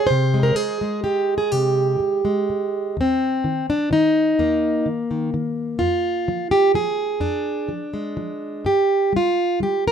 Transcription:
0.07 steel-string acoustic guitar C3 C5
0.34 steel-string acoustic guitar G#3
0.43 steel-string acoustic guitar A#4
0.55 steel-string acoustic guitar G#4, muted steel-string acoustic guitar stroke
0.81 steel-string acoustic guitar G#3
1.04 steel-string acoustic guitar G4, muted steel-string acoustic guitar stroke
1.38 steel-string acoustic guitar G#4
1.52 steel-string acoustic guitar C3 G4
2.00 muted steel-string acoustic guitar stroke
2.25 steel-string acoustic guitar G#3
2.49 muted steel-string acoustic guitar stroke
2.97 steel-string acoustic guitar D#2 C4
3.44 steel-string acoustic guitar D#3
3.70 steel-string acoustic guitar D4
3.91 steel-string acoustic guitar D#3 D#4
4.39 steel-string acoustic guitar D#2 A#3
4.86 steel-string acoustic guitar D#3
5.11 steel-string acoustic guitar D#3
5.34 steel-string acoustic guitar D#3
5.79 steel-string acoustic guitar F2 F4
6.28 steel-string acoustic guitar F3
6.51 steel-string acoustic guitar G4
6.74 steel-string acoustic guitar F3 G#4
7.20 steel-string acoustic guitar F2 D4
7.68 steel-string acoustic guitar F3
7.94 steel-string acoustic guitar G#3
8.17 steel-string acoustic guitar F3
8.65 steel-string acoustic guitar G2 G4
9.13 steel-string acoustic guitar G3 F4
9.60 steel-string acoustic guitar G3 G4
9.88 steel-string acoustic guitar A#4

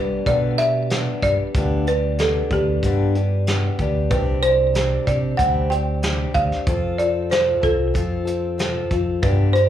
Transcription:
Already playing: fingered electric bass G3, steel-string acoustic guitar G3 B3 D4 G4, marimba B4
0.26 steel-string acoustic guitar G2 D3 G3 B3 D4 G4, fingered electric bass B2, marimba D5, kick, closed hi-hat
0.58 steel-string acoustic guitar G3 B3 D4 G4, marimba E5, closed hi-hat
0.90 steel-string acoustic guitar G3 B3 D4, snare, closed hi-hat
0.94 steel-string acoustic guitar G4
1.22 fingered electric bass G2, steel-string acoustic guitar B3 D4 G4, marimba D5, kick, closed hi-hat
1.27 steel-string acoustic guitar G3
1.55 fingered electric bass D2, steel-string acoustic guitar G2 D3 G3 B3 D4 G4, kick, closed hi-hat
1.87 steel-string acoustic guitar G3 B3 D4 G4, marimba B4, closed hi-hat
2.18 steel-string acoustic guitar G3 B3 D4 G4, marimba A4, snare, closed hi-hat
2.50 fingered electric bass D2, steel-string acoustic guitar G3 B3 D4 G4, marimba G4, kick, closed hi-hat
2.83 fingered electric bass G2, steel-string acoustic guitar G2 D3 G3 B3 D4 G4, kick, closed hi-hat
3.15 steel-string acoustic guitar G3 B3 D4 G4, closed hi-hat
3.47 steel-string acoustic guitar G3 B3 D4 G4, snare, closed hi-hat
3.79 fingered electric bass D2, steel-string acoustic guitar G3 B3 D4 G4, kick, closed hi-hat
4.10 fingered electric bass C2, steel-string acoustic guitar C3 G3 C4 D4 G4, marimba B4, kick, closed hi-hat
4.42 steel-string acoustic guitar D4 G4, marimba C5, closed hi-hat
4.47 steel-string acoustic guitar C4
4.74 steel-string acoustic guitar G3 C4 D4 G4, snare, closed hi-hat
5.07 fingered electric bass C3, steel-string acoustic guitar C4 D4 G4, marimba D5, kick, closed hi-hat
5.37 fingered electric bass D2, steel-string acoustic guitar C3 G3 C4 D4 G4, marimba F#5, kick, closed hi-hat
5.70 steel-string acoustic guitar C4 D4 G4, marimba G5, closed hi-hat
6.02 steel-string acoustic guitar G3 C4 D4 G4, snare, closed hi-hat
6.34 fingered electric bass D2, steel-string acoustic guitar C4 D4 G4, marimba F5, kick, closed hi-hat
6.52 snare
6.67 fingered electric bass F2, steel-string acoustic guitar F3 C4 F4 A4, kick, closed hi-hat
6.98 steel-string acoustic guitar C4 F4 A4, marimba D5, closed hi-hat
7.30 steel-string acoustic guitar F3 C4 F4 A4, marimba C5, snare, closed hi-hat
7.61 fingered electric bass C2, steel-string acoustic guitar C4 F4 A4, marimba A4, kick, closed hi-hat
7.94 fingered electric bass F2, steel-string acoustic guitar F3 C4 F4 A4, kick, closed hi-hat
8.25 steel-string acoustic guitar C4 F4 A4, closed hi-hat
8.58 steel-string acoustic guitar F3 C4 F4 A4, snare, closed hi-hat
8.90 fingered electric bass F2, steel-string acoustic guitar C4 F4 A4, kick, closed hi-hat
9.22 steel-string acoustic guitar G2 D3 G3 B3 D4 G4, fingered electric bass G2, marimba B4, kick, closed hi-hat
9.53 steel-string acoustic guitar D4 G4, marimba C5, closed hi-hat
9.58 steel-string acoustic guitar G3

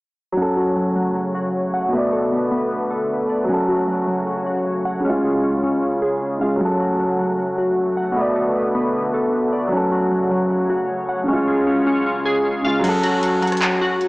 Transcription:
0.32 grand piano F#3
0.37 analog synth pad C#3 A3 F#4 C#5, synth keys F#3, grand piano C#4
0.42 grand piano A4
0.57 synth keys F#4
0.76 synth keys F#3
0.96 synth keys F#3
1.15 synth keys F#3
1.35 synth keys F#4
1.74 synth keys F#5
1.89 grand piano B2
1.93 analog synth pad D3 B4, grand piano A3, synth keys B3
1.98 grand piano D5
2.12 synth keys A4
2.32 synth keys B3
2.51 synth keys B3
2.71 synth keys B3
2.90 synth keys A4
3.29 synth keys D5
3.44 grand piano F#3
3.49 analog synth pad C#3 F#4 C#5, synth keys F#3, grand piano C#4
3.53 grand piano A4
3.68 synth keys F#4
3.88 synth keys F#3
4.07 synth keys F#3
4.27 synth keys F#3
4.46 synth keys F#4
4.85 synth keys F#5
5.00 grand piano C#3
5.05 analog synth pad C#3 G#3 F4, grand piano G#3, synth keys C#4
5.10 grand piano F4
5.24 synth keys G#4
5.44 synth keys C#4
5.63 synth keys C#4
5.83 synth keys C#4
6.02 synth keys G#4
6.39 grand piano C#3 G#3, synth keys F5
6.43 grand piano F4
6.56 grand piano F#3
6.60 synth keys F#3, analog synth pad A3 F#4, grand piano C#4
6.65 grand piano A4
6.80 synth keys F#4
6.99 synth keys F#3
7.19 synth keys F#3
7.39 synth keys F#3
7.58 synth keys F#4
7.97 synth keys F#5
8.12 grand piano B2
8.16 analog synth pad D3 B4, grand piano A3, synth keys B3
8.21 grand piano D5
8.36 synth keys A4
8.56 synth keys B3
8.75 synth keys B3
8.94 synth keys B3
9.14 synth keys A4
9.53 synth keys D5
9.67 grand piano F#3
9.72 analog synth pad C#3 C#5, synth keys F#3, grand piano C#4
9.77 grand piano A4
9.92 synth keys F#4
10.11 synth keys F#3
10.31 synth keys F#3
10.50 synth keys F#3
10.70 synth keys F#4
11.09 synth keys F#5
11.24 grand piano C#3
11.28 analog synth pad G#3 F4, grand piano G#3, synth keys C#4
11.33 grand piano F4
11.48 synth keys G#4
11.67 synth keys C#4
11.87 synth keys C#4
12.06 synth keys C#4
12.25 synth keys G#4
12.62 grand piano C#3 G#3, synth keys F5
12.67 grand piano F4
12.79 grand piano F#3
12.84 synth keys F#3, grand piano C#4, closed hi-hat, crash
12.88 grand piano A4
13.03 synth keys F#4, closed hi-hat
13.23 synth keys F#3, closed hi-hat
13.42 synth keys F#3, closed hi-hat
13.47 closed hi-hat
13.52 cross-stick, closed hi-hat
13.57 closed hi-hat
13.62 synth keys F#3, clap, closed hi-hat
13.81 synth keys F#4
14.01 closed hi-hat

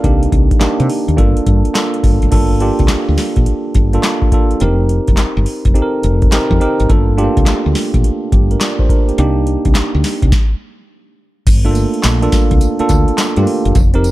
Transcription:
Already playing: tine electric piano A4 F5
0.03 fretless electric bass C2, tine electric piano A#3 D4 D#4 G4, kick, closed hi-hat
0.23 closed hi-hat
0.32 fretless electric bass C2, kick, closed hi-hat
0.51 kick, closed hi-hat
0.60 tine electric piano A#3 D4 D#4 G4, muted fretless electric bass stroke, snare, clap, closed hi-hat
0.80 fretless electric bass C3, closed hi-hat
0.90 open hi-hat
1.08 fretless electric bass D#2, closed hi-hat
1.17 fretless electric bass G1, tine electric piano A#3 D4 F4 A4, kick, closed hi-hat
1.37 closed hi-hat
1.46 fretless electric bass G2, kick, closed hi-hat
1.65 closed hi-hat
1.74 tine electric piano A#3 D4 F4 A4, snare, clap, closed hi-hat
1.94 closed hi-hat
2.04 fretless electric bass G1, kick, open hi-hat
2.22 fretless electric bass G#1, closed hi-hat
2.31 fretless electric bass G1, tine electric piano A#3 D4 F4 A4, kick, closed hi-hat, crash
2.60 tine electric piano A#3 D4 F4 G4, closed hi-hat
2.79 fretless electric bass C2, kick, closed hi-hat
2.88 snare, clap, closed hi-hat
3.09 fretless electric bass D2
3.18 snare, open hi-hat
3.36 fretless electric bass A#1, kick, closed hi-hat
3.46 closed hi-hat
3.74 fretless electric bass G1, kick, closed hi-hat
3.93 tine electric piano A#3 D4 F4 A4, closed hi-hat
4.03 snare, clap, closed hi-hat
4.22 kick
4.32 tine electric piano A#3 D4 F4 A4, kick, closed hi-hat
4.51 closed hi-hat
4.60 fretless electric bass F1, tine electric piano C4 D#4 G4 A#4, closed hi-hat
4.89 closed hi-hat
5.08 fretless electric bass F1, kick, closed hi-hat
5.17 snare, clap, closed hi-hat
5.37 fretless electric bass G1
5.46 open hi-hat
5.65 fretless electric bass F1, kick, closed hi-hat
5.74 tine electric piano C4 D#4 G4 A4, closed hi-hat
5.82 tine electric piano A#4
6.03 fretless electric bass F1, closed hi-hat
6.22 kick, closed hi-hat
6.32 tine electric piano C4 D#4 G4 A#4, snare, clap, closed hi-hat
6.51 fretless electric bass F2, kick
6.60 tine electric piano C4 D#4 G4 A#4, closed hi-hat
6.80 fretless electric bass G#1, closed hi-hat
6.89 fretless electric bass G1, tine electric piano A#3 D4 F4 A4, kick, closed hi-hat
7.17 tine electric piano A3 D4 F4 G4, closed hi-hat
7.24 tine electric piano A#3
7.37 fretless electric bass C2, kick, closed hi-hat
7.46 snare, clap, closed hi-hat
7.66 fretless electric bass D2
7.75 snare, open hi-hat
7.94 fretless electric bass A#1, kick, closed hi-hat
8.04 closed hi-hat
8.32 fretless electric bass G1, tine electric piano A#3 G4, kick, closed hi-hat
8.51 tine electric piano D4 A#4, closed hi-hat
8.60 tine electric piano F4 D5, snare, clap, closed hi-hat
8.79 tine electric piano C5, kick
8.89 tine electric piano D4 A#4, kick, closed hi-hat
9.08 tine electric piano A#3 G4, closed hi-hat
9.18 fretless electric bass C2, tine electric piano A#3 D4 D#4 G4, closed hi-hat
9.47 closed hi-hat
9.65 fretless electric bass C2, kick, closed hi-hat
9.75 snare, clap, closed hi-hat
9.95 fretless electric bass D2
10.04 snare, open hi-hat
10.22 fretless electric bass C2, kick, closed hi-hat
10.32 kick, snare
11.47 fretless electric bass G1, kick, closed hi-hat, crash, tambourine
11.65 tine electric piano A3 D4 F4 A4, closed hi-hat
11.71 tine electric piano A#3, closed hi-hat, tambourine
11.94 closed hi-hat
12.04 fretless electric bass A#1, snare, clap, closed hi-hat, tambourine
12.22 tine electric piano A#3 D4 F4 A4, closed hi-hat
12.32 kick, snare, closed hi-hat, tambourine
12.51 fretless electric bass C2, kick, closed hi-hat
12.61 closed hi-hat, tambourine
12.79 tine electric piano A#3 D4 F4 A4, muted fretless electric bass stroke, closed hi-hat
12.89 fretless electric bass D2, kick, clap, closed hi-hat, tambourine
13.08 closed hi-hat
13.18 snare, clap, closed hi-hat, tambourine
13.36 fretless electric bass G2, tine electric piano A3 D4 F4 G4, closed hi-hat
13.43 tine electric piano A#3
13.47 open hi-hat
13.65 fretless electric bass F#1, closed hi-hat
13.75 fretless electric bass F1, kick, closed hi-hat, tambourine
13.94 tine electric piano C4 D#4 G4 A#4, closed hi-hat
14.04 closed hi-hat, tambourine

